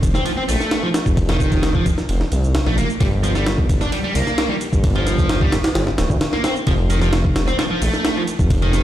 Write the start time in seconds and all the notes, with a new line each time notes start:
Already playing: F1
0.03 kick, ride, shaker
0.15 C4, snare, shaker
0.26 F3, ride, shaker
0.37 C4
0.49 A#1 A3, open hi-hat, shaker
0.60 snare, shaker
0.71 snare, ride, shaker
0.83 F3
0.94 snare, ride, shaker
1.06 F1, kick, shaker
1.17 kick, ride, shaker
1.29 D#3, snare, ride
1.40 kick, shaker
1.52 kick, ride, shaker
1.63 snare, ride, shaker
1.75 F3, kick
1.86 kick, ride, shaker
1.98 snare, shaker
2.09 F1, ride, shaker
2.21 snare
2.32 C2, ride, shaker
2.44 shaker
2.55 snare, ride, shaker
2.66 A#1 A3, snare
2.78 F1 A#3, ride, shaker
2.90 shaker
3.01 G1 G3, kick, ride, shaker
3.24 F3, ride, shaker
3.35 G3, snare, shaker
3.46 snare, ride, shaker
3.58 kick
3.69 kick, ride, shaker
3.81 D4, snare, shaker
3.92 G3, ride, shaker
4.04 G3
4.15 C2 A#3, open hi-hat, shaker
4.27 snare, shaker
4.38 snare, ride, shaker
4.50 G3
4.61 ride, shaker
4.73 G1, kick, shaker
4.84 kick, ride, shaker
4.95 F3, ride
5.07 snare, ride, shaker
5.18 kick, shaker
5.29 snare, ride, shaker
5.41 G3, kick
5.52 snare, ride, shaker
5.64 snare, ride, shaker
5.75 G1, snare, ride, shaker
5.87 snare
5.98 D1, snare, ride, shaker
6.10 D2, kick, shaker
6.21 snare, ride, shaker
6.33 A#3, snare
6.44 C4, snare, ride, shaker
6.56 shaker
6.67 F1 F3, kick, ride, shaker
6.90 D#3, ride, shaker
7.02 F3, snare, shaker
7.13 snare, ride, shaker
7.25 kick
7.36 snare, ride, shaker
7.48 C4, snare, shaker
7.59 F3, snare, ride, shaker
7.71 F3
7.82 A#1 A3, open hi-hat, shaker
7.94 snare, shaker
8.05 snare, ride, shaker
8.17 F3
8.28 ride, shaker
8.39 F1, kick, shaker
8.50 kick, ride, shaker
8.62 D#3, ride
8.73 snare, ride, shaker